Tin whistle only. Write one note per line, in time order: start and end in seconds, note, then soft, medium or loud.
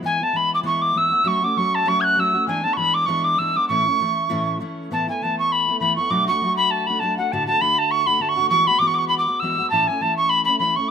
0.05 0.24 G#5 medium
0.23 0.38 A5 medium
0.36 0.52 B5 medium
0.54 0.60 D6 medium
0.66 0.83 C#6 medium
0.82 0.99 D6 medium
0.97 1.29 E6 medium
1.27 1.46 C#6 medium
1.44 1.59 D6 loud
1.57 1.76 C#6 medium
1.75 1.90 A5 loud
1.88 2.02 C#6 loud
2.01 2.21 F#6 medium
2.01 2.05 G#6 medium
2.19 2.47 E6 medium
2.47 2.65 G#5 medium
2.64 2.74 A5 medium
2.73 2.95 B5 loud
2.73 2.78 C#6 medium
2.94 3.07 D6 loud
3.06 3.25 C#6 loud
3.24 3.40 D6 medium
3.38 3.58 E6 medium
3.56 3.68 D6 medium
3.68 4.56 C#6 medium
4.93 5.07 A5 medium
5.09 5.24 G#5 medium
5.22 5.38 A5 medium
5.39 5.53 C#6 loud
5.52 5.79 B5 medium
5.79 5.95 B5 medium
5.96 6.12 C#6 medium
6.10 6.27 D6 loud
6.27 6.55 C#6 loud
6.56 6.72 B5 medium
6.70 6.88 A5 medium
6.86 7.01 B5 medium
6.99 7.17 A5 medium
7.18 7.33 F#5 medium
7.32 7.46 A5 medium
7.47 7.62 A5 loud
7.61 7.80 B5 loud
7.78 7.92 A5 loud
7.91 8.08 C#6 loud
8.06 8.23 B5 loud
8.21 8.30 A5 medium
8.28 8.49 C#6 loud
8.49 8.68 C#6 loud
8.67 8.80 B5 loud
8.79 8.89 D6 medium
8.87 8.96 C#6 loud
8.94 9.00 D6 medium
8.98 9.07 C#6 medium
9.08 9.17 B5 medium
9.18 9.41 D6 loud
9.40 9.69 E6 medium
9.70 9.89 A5 medium
9.87 10.03 G#5 medium
10.01 10.16 A5 medium
10.17 10.31 C#6 loud
10.29 10.44 B5 loud
10.44 10.58 B5 medium
10.59 10.77 B5 medium
10.76 10.90 C#6 medium